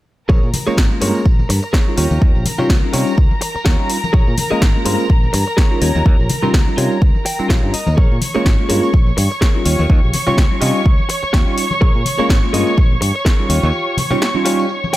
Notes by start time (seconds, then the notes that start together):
0.29 A#1 G#4 A#4 C#5 A#5, kick, tambourine
0.43 A#2, tambourine
0.54 open hi-hat, high conga, low conga
0.67 G#3 A#3 C#4 F4 G#4 A#4 C#5, muted fingered electric bass stroke, tambourine
0.78 G#1, kick, snare
0.91 G#3 A#3 C#4 F4, tambourine, high conga
1.01 G2 G#3 A#3 C#4 F4 G#4 A#4 C#5, open hi-hat
1.15 tambourine
1.25 A#1, kick, tambourine
1.39 tambourine, high conga
1.49 G2, muted clean electric guitar stroke, open hi-hat
1.63 muted clean electric guitar stroke, tambourine
1.73 G#4 A#4 C#5, kick, snare, tambourine, high conga
1.87 G3 C#4 D#4 F4, tambourine
1.97 D#2 F4 G4 C#5, open hi-hat
2.11 D#2, tambourine, high conga
2.22 kick, tambourine
2.35 A#1, tambourine
2.46 open hi-hat, high conga, low conga
2.58 G3 C#4 D#4 F4 G4 C#5, muted fingered electric bass stroke, tambourine, low conga
2.70 C#2, kick, snare
2.82 G3 C#4 D#4 F4, tambourine, high conga
2.93 C3 G3 C#4 D#4 F4 G4 C#5, snare, open hi-hat
3.07 tambourine
3.17 C#2, kick, tambourine
3.31 tambourine, high conga
3.41 muted clean electric guitar stroke, open hi-hat
3.55 muted clean electric guitar stroke, muted fingered electric bass stroke, tambourine
3.65 D#2 F4 G4 C#5, kick, snare, tambourine, high conga
3.79 G3 C#4 D#4 F4, tambourine
3.90 open hi-hat
4.04 tambourine, high conga
4.13 A#1 G#4 A#4 C#5, kick, tambourine
4.27 A#2, tambourine
4.38 open hi-hat, high conga, low conga
4.51 G#3 A#3 C#4 F4 G#4 A#4 D#5, muted fingered electric bass stroke, tambourine
4.62 G#1, kick, snare
4.75 G#3 A#3 C#4 F4, tambourine, high conga
4.85 G2 G#3 A#3 C#4 F4 G#4 A#4 C5, open hi-hat
5.00 tambourine
5.10 A#1, kick
5.23 tambourine, high conga
5.33 G2, muted clean electric guitar stroke, open hi-hat
5.46 muted clean electric guitar stroke, tambourine
5.57 G#4 A#4 C#5, kick, snare, tambourine, high conga
5.71 G3 C#4 D#4 F4, tambourine
5.81 D#2 F4 G4 C#5, open hi-hat
5.95 D#2, tambourine, high conga
6.06 D#2, kick
6.19 A#1, tambourine
6.29 open hi-hat, high conga, low conga
6.43 G3 C#4 D#4 F4 G4 A#4, muted fingered electric bass stroke, tambourine, low conga
6.54 C#2, kick, snare, tambourine
6.67 G3 C#4 D#4 F4, tambourine, high conga
6.77 C3 G3 C#4 D#4 F4 G4 C#5, snare, open hi-hat
6.92 tambourine
7.01 C#2, kick, tambourine
7.15 tambourine, high conga
7.25 G5, muted clean electric guitar stroke, open hi-hat
7.39 G3 C#4 D#4 F4, muted clean electric guitar stroke, muted fingered electric bass stroke, tambourine
7.49 A#1 F4 G4 C#5 F5, kick, snare, tambourine, high conga
7.62 G2 G3 C#4 D#4 F4, tambourine
7.74 D#5, muted fingered electric bass stroke, open hi-hat
7.87 D#2, tambourine, high conga
7.97 A#1 G#4 A#4 C#5 C#6, kick
8.11 A#2, tambourine
8.21 open hi-hat, high conga, low conga
8.34 G#3 A#3 C#4 F4 G#4 A#4 C#5, muted fingered electric bass stroke, tambourine
8.45 G#1, kick, snare, tambourine
8.59 G#3 A#3 C#4 F4, tambourine, high conga
8.69 G2 G#3 A#3 C#4 F4 G#4 A#4 C#5, open hi-hat
8.83 tambourine
8.93 A#1, kick, tambourine
9.07 tambourine, high conga
9.17 G2, muted clean electric guitar stroke, open hi-hat
9.31 muted clean electric guitar stroke, tambourine
9.41 G#4 A#4 C#5, kick, snare, tambourine, high conga
9.54 G3 C#4 D#4 F4, tambourine
9.65 D#2 F4 G4 C#5, open hi-hat
9.79 D#2, tambourine, high conga
9.90 D#2, kick, tambourine
10.03 A#1, tambourine
10.13 open hi-hat, high conga, low conga
10.27 G3 C#4 D#4 F4 G4 C#5, muted fingered electric bass stroke, tambourine, low conga
10.38 C#2, kick, snare
10.51 G3 C#4 D#4 F4, tambourine, high conga
10.61 C3 G3 C#4 D#4 F4 G4 D#5, snare, open hi-hat
10.75 tambourine
10.85 C#2, kick, tambourine
10.98 tambourine, high conga
11.09 muted clean electric guitar stroke, open hi-hat
11.23 muted clean electric guitar stroke, muted fingered electric bass stroke, tambourine
11.33 D#2 F4 G4 C#5, kick, snare, tambourine, high conga
11.46 G3 C#4 D#4 F4, tambourine
11.58 open hi-hat
11.71 tambourine, high conga
11.80 A#1 G#4 A#4 C#5, kick, tambourine
11.95 A#2, tambourine
12.05 open hi-hat, high conga, low conga
12.18 G#3 A#3 C#4 F4 G#4 A#4 C#5, muted fingered electric bass stroke, tambourine
12.29 G#1, kick, snare, tambourine
12.43 G#3 A#3 C#4 F4, tambourine, high conga
12.53 G2 G#3 A#3 C#4 F4 G#4 A#4 D#5, open hi-hat
12.67 tambourine
12.77 A#1, kick, tambourine
12.91 tambourine, high conga
13.01 G2, muted clean electric guitar stroke, open hi-hat
13.15 muted clean electric guitar stroke, tambourine
13.25 G#4 A#4 C#5, kick, snare, tambourine, high conga
13.39 G3 C#4 D#4 F4, tambourine
13.49 D#2 F4 G4 C#5, open hi-hat
13.63 D#2, tambourine, high conga
13.73 tambourine
13.87 tambourine
13.97 open hi-hat, high conga, low conga
14.11 G3 C#4 D#4 F4 G4 C#5, tambourine, low conga
14.22 snare, tambourine
14.34 G3 C#4 D#4 F4, tambourine, high conga
14.45 G3 C#4 D#4 F4 G4 C#5, snare, open hi-hat
14.59 tambourine
14.69 tambourine
14.84 tambourine, high conga
14.93 G5, muted clean electric guitar stroke, open hi-hat